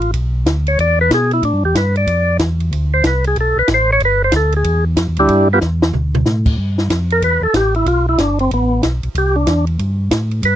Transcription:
Already playing: tonewheel organ A1 F4
0.02 ride
0.14 tonewheel organ B1, kick, ride
0.46 tonewheel organ D2, kick, snare, hi-hat pedal, ride
0.66 tonewheel organ C#5, ride
0.78 tonewheel organ E2 D5, kick, ride
1.01 tonewheel organ B4
1.11 tonewheel organ B2 G#4, kick, snare, hi-hat pedal, ride
1.31 tonewheel organ E4, ride
1.43 tonewheel organ A2 D4, kick, ride
1.54 tonewheel organ G2
1.64 tonewheel organ E2 G4
1.75 tonewheel organ G2 B4, kick, snare, hi-hat pedal, ride
1.96 tonewheel organ D5, ride
2.07 tonewheel organ F2, kick, ride
2.39 tonewheel organ E2, kick, snare, hi-hat pedal, ride
2.60 ride
2.71 tonewheel organ D2, kick, ride
2.94 tonewheel organ C5
3.04 tonewheel organ C2 B4, kick, snare, hi-hat pedal, ride
3.24 tonewheel organ G#4, ride
3.36 tonewheel organ B1, kick, ride
3.40 tonewheel organ A4
3.56 tonewheel organ B1 B4
3.68 tonewheel organ A1, kick, snare, hi-hat pedal, ride
3.74 tonewheel organ C5
3.93 tonewheel organ C#5
4.00 tonewheel organ G1, kick, ride
4.05 tonewheel organ B4
4.24 tonewheel organ C5
4.32 tonewheel organ D2, kick, snare, hi-hat pedal, ride
4.36 tonewheel organ A4
4.52 ride
4.57 tonewheel organ G#4
4.64 tonewheel organ E2, kick, ride
4.97 tonewheel organ F2, kick, snare, hi-hat pedal, ride
5.08 tonewheel organ E2
5.17 tonewheel organ D2 G3 D4 E4 G4, ride
5.29 tonewheel organ G2, kick, ride
5.53 tonewheel organ B3 F4 G4 B4
5.61 tonewheel organ E2, snare, hi-hat pedal
5.82 snare
5.93 tonewheel organ D2, floor tom
6.15 floor tom
6.26 tonewheel organ A2, snare, hi-hat pedal
6.46 kick, crash
6.58 tonewheel organ G2, kick
6.78 snare
6.90 tonewheel organ F2, kick, snare, hi-hat pedal, ride
7.10 tonewheel organ A#4, ride
7.21 tonewheel organ E2 B4, kick, ride
7.41 tonewheel organ E2 A4
7.54 tonewheel organ A1 G4, kick, snare, hi-hat pedal, ride
7.74 tonewheel organ E4, ride
7.86 tonewheel organ B1 F4, kick, ride
8.09 tonewheel organ E4
8.18 tonewheel organ G1 D4, kick, snare, hi-hat pedal, ride
8.39 tonewheel organ C4, ride
8.51 tonewheel organ A1 B3, kick, ride
8.82 tonewheel organ B1, kick, snare, hi-hat pedal, ride
9.03 tonewheel organ B1, ride
9.15 tonewheel organ C2 G4, kick, ride
9.36 tonewheel organ D4
9.47 tonewheel organ E2, kick, snare, hi-hat pedal, ride
9.67 ride
9.79 tonewheel organ G2, kick, ride
10.11 tonewheel organ A2, kick, snare, hi-hat pedal, ride
10.31 ride
10.43 tonewheel organ G2 B4, kick, ride

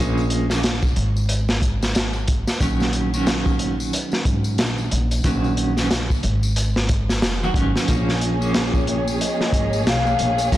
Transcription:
Already playing: upright bass A#1
0.00 clean electric guitar F3 G#3 A#3 C#4
0.17 tambourine
0.30 closed hi-hat
0.50 clean electric guitar F3 G#3 A#3 C#4, snare, tambourine
0.63 snare, closed hi-hat, tambourine
0.82 kick, tambourine
0.96 upright bass G#1, closed hi-hat
1.17 tambourine
1.29 closed hi-hat, tambourine
1.49 snare, tambourine
1.62 kick, closed hi-hat
1.83 snare, tambourine
1.95 snare, closed hi-hat, tambourine
2.13 tambourine
2.28 kick, closed hi-hat
2.47 snare, tambourine
2.60 upright bass A#1, clean electric guitar D#3 F#3 B3 C#4, kick, closed hi-hat, tambourine
2.80 snare, tambourine
2.93 closed hi-hat
3.14 clean electric guitar D#3 F#3 B3 C#4, tambourine
3.27 snare, closed hi-hat, tambourine
3.46 kick, tambourine
3.59 closed hi-hat
3.80 tambourine
3.93 closed hi-hat, tambourine
4.12 snare, tambourine
4.25 upright bass G#1, kick, closed hi-hat
4.44 tambourine
4.58 upright bass A#1, snare, closed hi-hat, tambourine
4.78 tambourine
4.91 upright bass A#1, closed hi-hat
5.11 closed hi-hat, tambourine
5.24 upright bass A#1, clean electric guitar D#3 F#3 B3 C#4, kick, closed hi-hat, tambourine
5.44 tambourine
5.57 closed hi-hat
5.77 clean electric guitar D#3 F#3 B3 C#4, snare, tambourine
5.91 snare, closed hi-hat, tambourine
6.10 kick, tambourine
6.23 upright bass G#1, closed hi-hat
6.43 tambourine
6.56 closed hi-hat, tambourine
6.76 snare, tambourine
6.89 kick, closed hi-hat
7.09 snare, tambourine
7.22 upright bass F1, snare, closed hi-hat, tambourine
7.43 clean electric guitar D#3 F#3 B3 F#4, tambourine
7.54 upright bass G#1, clean electric guitar D#3 F#3 B3 C#4, kick, closed hi-hat
7.76 snare, tambourine
7.87 upright bass A#1, clean electric guitar F3 G#3 A#3 C#4, string section A#3 G#4 C#5, kick, closed hi-hat, tambourine
8.09 snare, tambourine
8.21 closed hi-hat
8.41 clean electric guitar F3 G#3 A#3 C#4, tambourine
8.54 snare, closed hi-hat, tambourine
8.74 kick, tambourine
8.87 flute C#5, closed hi-hat
9.08 tambourine
9.21 flute D#5, closed hi-hat, tambourine
9.41 snare, tambourine
9.53 upright bass G#1, kick, closed hi-hat
9.73 tambourine
9.86 upright bass B1, flute F5, snare, closed hi-hat, tambourine
10.07 tambourine
10.19 upright bass A#1, closed hi-hat
10.38 closed hi-hat, tambourine
10.52 upright bass A#1, clean electric guitar F3 G#3 A#3 C#4, flute F5, kick, closed hi-hat, tambourine

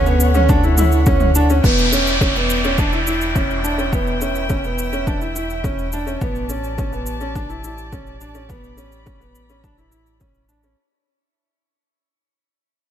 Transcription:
Already playing: analog synth bass D2, string quartet D3 C#5 F#5, cello C#4
0.06 upright piano B3, shaker
0.20 shaker
0.34 upright piano C#4, mid tom, shaker
0.49 upright piano D4, kick, shaker
0.64 upright piano E4, shaker
0.77 upright piano E4, mid tom, shaker
0.92 shaker
1.06 upright piano C#4, kick, shaker
1.20 mid tom, shaker
1.35 upright piano D4, shaker
1.50 upright piano C#4, shaker
1.64 analog synth bass E1, upright piano B3, string quartet E4 D5 G5, kick, downlifter, shaker
1.78 shaker
1.92 upright piano C#4, shaker
2.07 shaker
2.21 upright piano C#4, kick, shaker
2.36 upright piano B3, shaker
2.50 shaker
2.64 upright piano C#4, shaker
2.78 upright piano D4, kick, shaker
2.93 upright piano E4, shaker
3.07 upright piano E4, shaker
3.21 shaker
3.35 upright piano C#4, kick, shaker
3.51 shaker
3.64 upright piano D4, shaker
3.78 upright piano C#4, shaker
3.92 upright piano B3, string quartet E5, kick, shaker
4.07 shaker
4.21 upright piano C#4, shaker
4.35 shaker
4.49 upright piano C#4, kick, shaker
4.64 upright piano B3, shaker
4.78 shaker
4.93 upright piano C#4, shaker
5.07 upright piano D4, kick, shaker
5.21 upright piano E4, shaker
5.36 upright piano E4, shaker
5.50 shaker
5.64 upright piano C#4, kick, shaker
5.79 shaker
5.92 upright piano D4, shaker
6.07 upright piano C#4, shaker
6.21 analog synth bass A1, upright piano B3, string quartet G4 D5 A5, kick, shaker
6.36 shaker
6.49 upright piano C#4, shaker
6.64 shaker
6.78 upright piano C#4, kick, shaker
6.92 upright piano B3, shaker
7.06 shaker
7.21 upright piano C#4, shaker
7.36 upright piano D4, kick, shaker
7.50 upright piano E4, shaker
7.64 upright piano E4, shaker
7.78 shaker
7.93 upright piano C#4, kick, shaker
8.07 shaker
8.21 upright piano D4, shaker
8.35 upright piano C#4, shaker
8.49 upright piano B3, string quartet B5, kick, shaker
8.64 shaker
8.77 upright piano C#4, shaker
8.92 shaker
9.06 upright piano C#4, kick, shaker
9.20 upright piano B3, shaker
9.35 shaker
9.49 upright piano C#4, shaker
9.64 upright piano D4, kick, shaker
9.78 upright piano E4, shaker
9.91 upright piano E4, shaker
10.06 shaker
10.20 upright piano C#4, kick, shaker
10.35 shaker
10.49 upright piano D4, shaker
10.63 upright piano C#4, shaker

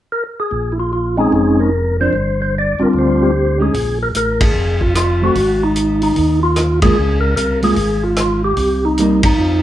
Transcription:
0.12 tonewheel organ A#4
0.40 tonewheel organ G#4
0.51 tonewheel organ A#1
0.72 tonewheel organ E4
0.80 tonewheel organ F4
0.93 tonewheel organ F4
1.17 tonewheel organ G#3 C4 C#4 D#4 G#4
1.32 tonewheel organ F1 G#4
1.60 tonewheel organ A#4
2.00 hollow-body jazz guitar F3 C4 D4, tonewheel organ C5
2.13 tonewheel organ G1
2.42 tonewheel organ C5
2.58 tonewheel organ D5
2.79 tonewheel organ G1 G3 C4 D4 F4
2.83 tonewheel organ A#4
2.93 tonewheel organ D2
2.98 tonewheel organ C5
3.23 tonewheel organ G4
3.59 hollow-body jazz guitar G#3 C#4 D#4, tonewheel organ G#4
3.74 tonewheel organ A#1, kick, open hi-hat
4.03 tonewheel organ A#4
4.15 tonewheel organ A1 A#4, closed hi-hat
4.41 tonewheel organ G#4, kick, ride
4.54 tonewheel organ F1
4.81 tonewheel organ F4, kick
4.95 tonewheel organ F4, cross-stick, closed hi-hat
5.22 hollow-body jazz guitar F#3 A3 C4, tonewheel organ F#4
5.35 tonewheel organ G#1, kick, open hi-hat
5.63 tonewheel organ D#4
5.76 closed hi-hat
6.02 tonewheel organ D#4, open hi-hat
6.16 tonewheel organ D#2, kick, open hi-hat
6.43 tonewheel organ F4
6.56 cross-stick, closed hi-hat
6.82 hollow-body jazz guitar G#3 A#3 F4, tonewheel organ G#4, kick, ride
6.98 tonewheel organ C#2
7.21 tonewheel organ A#4
7.36 tonewheel organ C2 A#4, closed hi-hat
7.62 hollow-body jazz guitar G#3 A#3 F4, tonewheel organ G#4, open hi-hat
7.76 tonewheel organ G#1, kick, open hi-hat
8.04 tonewheel organ F4
8.16 tonewheel organ F4, cross-stick, closed hi-hat
8.44 tonewheel organ G4
8.57 tonewheel organ C2, kick, open hi-hat
8.85 tonewheel organ D#4
8.98 hollow-body jazz guitar G3 A#3 D#4, closed hi-hat
9.23 tonewheel organ D#4, kick, ride
9.38 tonewheel organ F2

